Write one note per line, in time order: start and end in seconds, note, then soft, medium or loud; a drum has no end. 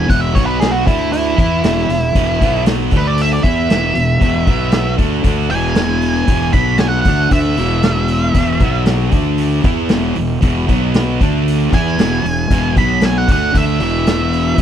0.07 0.34 E1 medium
0.07 0.33 E2 medium
0.07 0.32 B2 medium
0.07 0.33 E3 medium
0.07 0.21 F#5 medium
0.07 kick medium
0.07 open hi-hat medium
0.21 0.35 E5 medium
0.33 0.83 B1 medium
0.33 0.85 B2 medium
0.33 0.85 F#3 medium
0.33 0.86 B3 medium
0.33 0.47 C#5 medium
0.33 kick medium
0.33 open hi-hat soft
0.46 0.60 B4 medium
0.60 0.73 G#4 medium
0.60 snare loud
0.60 open hi-hat medium
0.72 0.85 F#4 medium
0.86 1.35 D2 medium
0.86 1.36 D3 medium
0.86 1.36 A3 medium
0.86 1.37 D4 medium
0.86 1.11 E4 medium
0.86 kick loud
0.86 open hi-hat soft
1.13 2.63 E4 medium
1.13 open hi-hat medium
1.37 1.62 E2 medium
1.37 1.62 E3 medium
1.37 1.62 B3 medium
1.37 1.63 E4 medium
1.37 kick loud
1.37 open hi-hat soft
1.64 1.88 E1 medium
1.64 1.89 E2 medium
1.64 1.89 B2 medium
1.64 1.90 E3 loud
1.64 snare loud
1.64 open hi-hat medium
1.89 2.13 E1 medium
1.89 2.11 E2 medium
1.89 2.11 B2 medium
1.89 open hi-hat medium
2.15 2.39 E1 medium
2.15 2.41 E2 medium
2.15 2.40 B2 medium
2.15 2.41 E3 loud
2.15 kick medium
2.15 open hi-hat medium
2.41 2.89 B1 medium
2.41 2.92 B2 medium
2.41 2.92 F#3 medium
2.41 2.93 B3 medium
2.41 kick loud
2.41 open hi-hat soft
2.66 snare loud
2.66 open hi-hat medium
2.91 3.40 D2 medium
2.91 3.43 D3 medium
2.91 3.44 A3 medium
2.91 3.44 D4 loud
2.91 kick loud
2.91 open hi-hat medium
2.97 3.07 B4 medium
3.07 3.21 D5 medium
3.18 3.33 E5 medium
3.18 open hi-hat medium
3.33 3.43 D5 medium
3.43 3.68 E2 medium
3.43 3.69 E3 medium
3.43 3.70 B3 medium
3.43 3.70 E4 loud
3.43 4.95 E5 medium
3.43 kick loud
3.43 open hi-hat soft
3.69 3.94 E1 medium
3.69 3.93 E2 medium
3.69 3.94 B2 loud
3.69 3.95 E3 loud
3.69 snare loud
3.69 open hi-hat medium
3.95 4.20 E1 medium
3.95 4.16 E2 medium
3.95 4.16 B2 medium
3.95 open hi-hat medium
4.20 4.45 E1 medium
4.20 4.46 E2 medium
4.20 4.46 B2 medium
4.20 4.47 E3 loud
4.20 kick medium
4.20 open hi-hat medium
4.47 4.95 B1 medium
4.47 4.97 B2 medium
4.47 4.98 F#3 medium
4.47 4.98 B3 loud
4.47 kick loud
4.47 open hi-hat soft
4.72 snare loud
4.72 open hi-hat medium
4.98 5.23 D2 medium
4.98 5.23 D3 medium
4.98 5.23 A3 medium
4.98 5.24 D4 medium
4.98 kick loud
4.98 open hi-hat soft
5.24 5.49 D2 medium
5.24 5.50 D3 medium
5.24 5.50 A3 medium
5.24 5.51 D4 loud
5.24 kick medium
5.24 open hi-hat medium
5.50 6.24 E1 medium
5.50 6.26 E2 medium
5.50 6.27 B2 medium
5.50 6.27 E3 medium
5.50 6.51 G#5 medium
5.50 open hi-hat soft
5.75 snare loud
5.75 open hi-hat medium
6.02 open hi-hat medium
6.27 6.52 E1 medium
6.27 6.53 E2 medium
6.27 6.53 B2 medium
6.27 6.54 E3 medium
6.27 kick medium
6.27 open hi-hat medium
6.53 7.02 B1 medium
6.53 7.05 B2 medium
6.53 7.05 F#3 medium
6.53 7.06 B3 medium
6.53 6.79 B5 medium
6.53 kick loud
6.53 open hi-hat soft
6.78 6.88 G#5 medium
6.78 snare loud
6.78 open hi-hat medium
6.89 7.00 F#5 medium
7.01 7.29 F#5 medium
7.01 kick medium
7.01 open hi-hat soft
7.06 7.30 D2 medium
7.06 7.32 D3 medium
7.06 7.32 A3 loud
7.06 7.32 D4 medium
7.31 7.56 D2 medium
7.31 7.58 D3 medium
7.31 7.58 A3 loud
7.31 7.58 D4 medium
7.31 8.84 E5 medium
7.31 kick medium
7.31 open hi-hat medium
7.57 8.32 E1 medium
7.57 8.34 E2 medium
7.57 8.35 B2 medium
7.57 8.35 E3 loud
7.57 open hi-hat soft
7.83 snare loud
7.83 open hi-hat medium
8.08 open hi-hat medium
8.34 8.59 E1 medium
8.34 8.61 E2 medium
8.34 8.60 B2 medium
8.34 8.61 E3 loud
8.34 kick medium
8.34 open hi-hat medium
8.60 9.09 B1 medium
8.60 9.12 B2 medium
8.60 9.13 F#3 medium
8.60 9.13 B3 medium
8.60 kick medium
8.60 open hi-hat soft
8.86 snare loud
8.86 open hi-hat medium
9.12 9.61 D2 medium
9.12 9.63 D3 medium
9.12 9.64 A3 medium
9.12 9.65 D4 medium
9.12 kick loud
9.12 open hi-hat medium
9.38 open hi-hat medium
9.64 9.89 E2 loud
9.64 9.90 E3 medium
9.64 9.90 B3 medium
9.64 9.91 E4 loud
9.64 kick loud
9.64 open hi-hat soft
9.89 10.15 E1 medium
9.89 10.15 E2 medium
9.89 10.15 B2 medium
9.89 10.17 E3 loud
9.89 snare loud
9.89 open hi-hat medium
10.16 10.42 E1 medium
10.16 10.37 E2 medium
10.16 10.37 B2 medium
10.16 open hi-hat soft
10.41 10.67 E1 medium
10.41 10.67 E2 medium
10.41 10.66 B2 medium
10.41 10.67 E3 medium
10.41 kick loud
10.41 open hi-hat medium
10.67 11.17 B1 medium
10.67 11.20 B2 medium
10.67 11.19 F#3 medium
10.67 11.20 B3 medium
10.67 kick medium
10.67 open hi-hat soft
10.94 snare loud
10.94 open hi-hat medium
11.21 11.69 D2 medium
11.21 11.72 D3 medium
11.21 11.72 A3 medium
11.21 11.73 D4 loud
11.21 kick loud
11.21 open hi-hat soft
11.48 open hi-hat medium
11.72 11.97 E2 medium
11.72 11.99 E3 medium
11.72 11.99 B3 medium
11.72 12.00 E4 loud
11.72 12.74 G#5 loud
11.72 kick medium
11.72 open hi-hat medium
11.98 12.23 E1 medium
11.98 12.24 E2 medium
11.98 12.25 B2 medium
11.98 12.25 E3 loud
11.98 snare loud
11.98 open hi-hat medium
12.24 12.49 E1 medium
12.24 12.46 E2 medium
12.24 12.47 B2 medium
12.24 open hi-hat medium
12.50 12.75 E1 medium
12.50 12.76 E2 medium
12.50 12.76 B2 medium
12.50 12.77 E3 medium
12.50 kick medium
12.50 open hi-hat medium
12.76 13.25 B1 medium
12.76 13.28 B2 medium
12.76 13.29 F#3 medium
12.76 13.29 B3 loud
12.76 13.03 B5 medium
12.76 kick loud
12.76 open hi-hat soft
13.01 snare loud
13.01 open hi-hat medium
13.06 13.18 G#5 medium
13.18 13.29 F#5 medium
13.28 13.53 D2 medium
13.28 13.52 D3 medium
13.28 13.54 A3 medium
13.28 13.54 D4 loud
13.28 kick loud
13.28 open hi-hat medium
13.32 13.56 F#5 medium
13.54 13.79 D2 medium
13.54 13.79 D3 medium
13.54 13.80 A3 loud
13.54 13.80 D4 loud
13.54 14.62 E5 medium
13.54 kick medium
13.54 open hi-hat medium
13.80 14.54 E1 medium
13.80 14.57 E2 medium
13.80 14.57 B2 medium
13.80 14.58 E3 loud
13.80 open hi-hat soft
14.07 snare loud
14.07 open hi-hat medium
14.33 open hi-hat soft
14.58 14.62 E1 medium
14.58 14.62 E2 medium
14.58 14.62 B2 medium
14.58 kick medium
14.58 open hi-hat medium